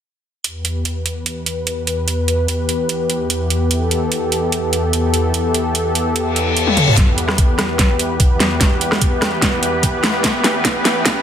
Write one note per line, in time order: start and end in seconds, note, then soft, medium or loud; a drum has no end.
0.44 6.93 E2 medium
0.44 6.93 E3 medium
0.44 6.93 B3 medium
0.44 6.93 G4 medium
0.44 3.68 B4 medium
0.44 closed hi-hat medium
0.65 closed hi-hat medium
0.85 closed hi-hat medium
1.06 closed hi-hat soft
1.26 closed hi-hat medium
1.46 closed hi-hat medium
1.67 closed hi-hat medium
1.87 closed hi-hat soft
2.08 closed hi-hat medium
2.28 closed hi-hat soft
2.48 closed hi-hat medium
2.69 closed hi-hat soft
2.89 closed hi-hat medium
3.10 closed hi-hat soft
3.30 closed hi-hat medium
3.50 closed hi-hat soft
3.71 6.94 A4 medium
3.71 closed hi-hat medium
3.91 closed hi-hat soft
4.12 closed hi-hat medium
4.32 closed hi-hat soft
4.52 closed hi-hat medium
4.73 closed hi-hat soft
4.93 closed hi-hat medium
5.14 closed hi-hat soft
5.34 closed hi-hat medium
5.54 closed hi-hat soft
5.75 closed hi-hat medium
5.95 closed hi-hat soft
6.16 closed hi-hat medium
6.16 reverse cymbal medium
6.36 closed hi-hat soft
6.57 closed hi-hat medium
6.67 high tom soft
6.77 closed hi-hat soft
6.77 mid tom medium
6.88 mid tom medium
6.97 11.22 E2 medium
6.97 11.22 E3 medium
6.97 11.22 B3 medium
6.97 11.22 G4 medium
6.97 11.22 B4 medium
6.97 kick medium
6.97 snare soft
6.97 closed hi-hat medium
6.97 riser medium
7.18 closed hi-hat medium
7.29 cross-stick medium
7.29 snare soft
7.38 kick loud
7.38 closed hi-hat medium
7.59 cross-stick medium
7.59 snare soft
7.59 closed hi-hat medium
7.79 kick medium
7.79 snare medium
7.79 closed hi-hat medium
7.99 closed hi-hat medium
8.20 kick medium
8.20 closed hi-hat medium
8.40 snare medium
8.40 closed hi-hat medium
8.61 kick loud
8.61 snare medium
8.61 closed hi-hat medium
8.81 closed hi-hat soft
8.92 cross-stick medium
8.92 snare medium
9.01 kick loud
9.01 closed hi-hat medium
9.22 cross-stick medium
9.22 snare medium
9.22 closed hi-hat medium
9.42 kick medium
9.42 snare medium
9.42 closed hi-hat medium
9.63 closed hi-hat medium
9.83 kick loud
9.83 closed hi-hat medium
10.04 snare medium
10.04 closed hi-hat medium
10.24 kick loud
10.24 snare medium
10.24 closed hi-hat medium
10.44 snare medium
10.44 closed hi-hat medium
10.65 kick loud
10.65 snare medium
10.65 closed hi-hat medium
10.85 snare medium
10.85 closed hi-hat medium
11.06 kick loud
11.06 snare medium
11.06 closed hi-hat medium